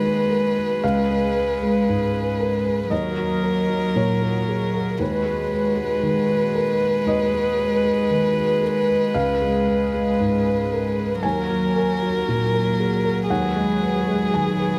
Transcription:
Already playing: felt piano D#2 D#3 G#3 A#4 B4 D#5, cello G#3, analog synth pad G#3 F#4 B4, violin B4
0.05 felt piano B4
0.30 felt piano A#4
0.57 felt piano B4
0.82 felt piano C#2 F5, analog synth pad G#4
1.10 felt piano G#3
1.37 felt piano B4
1.62 felt piano G#3
1.89 felt piano G#2
2.13 felt piano B4
2.40 felt piano A#4
2.66 felt piano B4
2.90 felt piano D#2 D#5, cello F#3, analog synth pad A#3 F#4 A#4, violin A#4
3.17 felt piano F#3
3.43 felt piano A#4
3.70 felt piano F#3
3.96 felt piano A#2 C#5
4.22 felt piano A#4
4.49 felt piano G#4
4.74 felt piano A#4
4.97 felt piano D#2 B4, analog synth pad G#3 B4, cello G#3, violin B4
5.25 felt piano G#3
5.52 felt piano B4
5.77 felt piano G#3
6.03 felt piano D#3
6.30 felt piano B4
6.55 felt piano A#4
6.81 felt piano B4
7.06 felt piano D#2 D#5
7.34 felt piano G#3
7.59 felt piano B4
7.85 felt piano G#3
8.11 felt piano D#3
8.37 felt piano B4
8.63 felt piano A#4
8.89 felt piano B4
9.13 felt piano C#2 F5, analog synth pad G#4
9.42 felt piano G#3
9.67 felt piano B4
9.94 felt piano G#3
10.20 felt piano G#2
10.47 felt piano B4
10.73 felt piano A#4
10.99 felt piano B4
11.21 felt piano D#2 G#5, cello F#3, analog synth pad A#3 F#4 A#4, violin A#4
11.50 felt piano F#3
11.76 felt piano A#4
12.02 felt piano F#3
12.28 felt piano A#2
12.54 felt piano A#4
12.80 felt piano G#4
13.05 felt piano A#4
13.29 felt piano D#2 F#5, analog synth pad G#3 B4, violin G#4
13.56 felt piano G#3
13.82 felt piano B4
14.08 felt piano G#3
14.34 felt piano D#3 G#5
14.59 felt piano B4

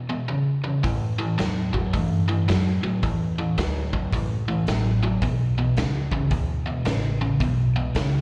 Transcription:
0.09 overdriven electric guitar E2 B2
0.28 overdriven electric guitar E2 C#3
0.64 overdriven electric guitar E2 C#3
0.83 overdriven electric guitar A2 E3, upright bass A2, kick, open hi-hat
1.18 overdriven electric guitar A2 E3
1.38 upright bass E2, overdriven electric guitar A2 F#3, snare, open hi-hat
1.73 overdriven electric guitar A2 F#3, kick
1.94 upright bass G2, overdriven electric guitar A2 E3, kick, open hi-hat
2.29 overdriven electric guitar A2 E3
2.48 upright bass F#2, overdriven electric guitar A2 F#3, snare, open hi-hat
2.83 overdriven electric guitar A2 F#3, muted upright bass stroke
3.03 upright bass E2, overdriven electric guitar A2 E3, kick, open hi-hat
3.38 overdriven electric guitar A2 E3
3.58 upright bass D2, overdriven electric guitar A2 F#3, snare, open hi-hat
3.93 overdriven electric guitar A2 F#3, kick
4.12 upright bass C#2, overdriven electric guitar A2 E3, kick, open hi-hat
4.48 overdriven electric guitar A2 E3
4.67 upright bass A1, overdriven electric guitar A2 F#3, snare, open hi-hat
5.03 overdriven electric guitar A2 F#3
5.22 upright bass B1, overdriven electric guitar E2 B2, kick, open hi-hat
5.58 overdriven electric guitar E2 B2
5.77 upright bass C#2, overdriven electric guitar E2 C#3, snare, open hi-hat
6.12 overdriven electric guitar E2 C#3, kick
6.31 upright bass D2, overdriven electric guitar E2 B2, kick, open hi-hat
6.66 overdriven electric guitar E2 B2
6.85 upright bass A1, overdriven electric guitar E2 C#3, snare, open hi-hat
7.21 overdriven electric guitar E2 C#3
7.40 upright bass B1, overdriven electric guitar E2 B2, kick, open hi-hat
7.76 overdriven electric guitar E2 B2
7.95 upright bass C#2, overdriven electric guitar E2 C#3, snare, open hi-hat

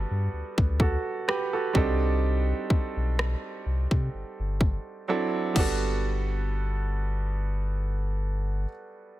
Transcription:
Already playing: grand piano G3 B3 D4 F#4 A4
0.11 sub bass G2
0.33 sub bass D2
0.58 sub bass D2, kick
0.80 grand piano F#4 A4, kick
1.28 grand piano G4 B4, cross-stick
1.53 grand piano F#4 A4
1.73 sub bass C2, grand piano G3 C4 D4 D#4 A4, kick
2.70 kick
2.96 sub bass B1
3.19 cross-stick
3.66 sub bass C2
3.91 sub bass C3, kick
4.14 sub bass G1
4.39 sub bass G1
4.61 kick
5.08 grand piano F#3 C4 D4 E4 A4
5.53 sub bass G1, grand piano G3 B3 D4, kick, crash
5.58 grand piano F#4 A4

